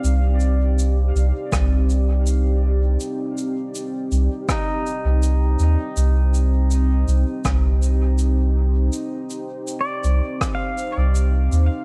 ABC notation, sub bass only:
X:1
M:4/4
L:1/16
Q:1/4=81
K:Cm
V:1 name="Sub bass" clef=bass
C,,6 C,, z C,,8 | z6 C,, z4 C,,3 E,, z | C,,6 C,, z C,,8 | z6 C,, z4 C,,3 E,, z |]